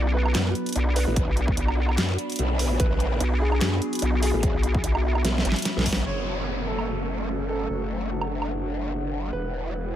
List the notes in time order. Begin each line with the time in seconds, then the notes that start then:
Already playing: B1 F#3 B3 D4 F#4 D5 F#5 A5 B5
0.14 B4
0.26 low woodblock
0.35 F#2, snare, clap, closed hi-hat
0.55 closed hi-hat
0.66 closed hi-hat
0.69 closed hi-hat
0.73 closed hi-hat
0.76 B1, closed hi-hat
0.96 B4, open hi-hat
1.07 A1
1.16 kick, closed hi-hat
1.28 B1
1.37 closed hi-hat
1.48 kick
1.57 B1, closed hi-hat
1.68 low woodblock
1.89 low woodblock
1.98 F#2, snare, clap, closed hi-hat
2.18 closed hi-hat
2.30 closed hi-hat
2.32 closed hi-hat
2.36 B1, closed hi-hat
2.39 closed hi-hat
2.59 open hi-hat
2.80 B1 B4, kick, closed hi-hat
3.00 closed hi-hat
3.20 B1, closed hi-hat
3.41 G#4
3.52 low woodblock
3.61 F#2, snare, clap, closed hi-hat
3.69 E5
3.82 closed hi-hat
3.93 closed hi-hat
3.95 closed hi-hat
3.99 B1, closed hi-hat
4.02 closed hi-hat
4.23 G#4, open hi-hat
4.34 A1
4.43 kick, closed hi-hat
4.54 B1
4.63 closed hi-hat
4.75 kick
4.84 B1, closed hi-hat
4.95 low woodblock
5.15 low woodblock
5.25 B1, snare, closed hi-hat
5.38 snare
5.45 A1, closed hi-hat
5.52 snare
5.56 closed hi-hat
5.59 closed hi-hat
5.62 snare, closed hi-hat
5.65 closed hi-hat
5.77 B1, snare
5.86 kick, open hi-hat
5.93 snare
6.06 F#1 F#3 A3 C#4 C#5, downlifter
6.34 A4
6.67 A4
6.79 F#5 A5, low woodblock
7.49 A4
7.69 F#1 D4
8.21 low woodblock
8.42 low woodblock
9.33 E1 E3 E4 G#4 B4
9.52 B4
9.89 G#5